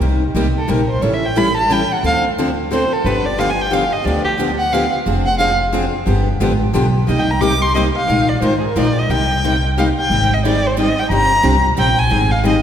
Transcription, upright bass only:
0.00 0.28 C2 medium
0.35 0.64 C2 medium
0.69 0.98 A#1 medium
1.02 1.83 A1 medium
2.03 2.84 D2 medium
3.04 3.85 G1 medium
4.05 4.86 D2 medium
5.06 5.87 F1 medium
6.06 6.34 G1 medium
6.40 6.69 G#1 medium
6.74 7.03 B1 medium
7.08 7.88 C2 medium
8.08 8.35 A#1 medium
8.41 8.70 G#1 medium
8.76 9.04 A#1 medium
9.09 9.90 C2 medium
10.10 10.90 G#1 medium
11.10 11.37 G1 medium
11.44 11.72 C2 medium
11.78 12.06 A#1 medium
12.11 12.62 G#1 medium

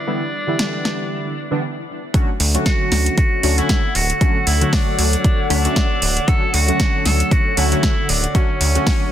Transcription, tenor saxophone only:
0.00 1.62 D4 medium
2.66 3.14 F#4 loud
3.18 3.60 F#4 medium
3.58 3.97 E4 loud
3.95 4.48 F#4 loud
4.47 4.74 E4 loud
4.73 5.50 D4 loud
5.50 6.30 D4 loud
6.28 6.55 A4 loud
6.54 7.07 F#4 loud
7.06 7.33 A4 loud
7.32 7.59 F#4 loud
7.57 8.11 E4 loud
8.09 8.34 D4 medium
8.35 9.12 C#4 medium

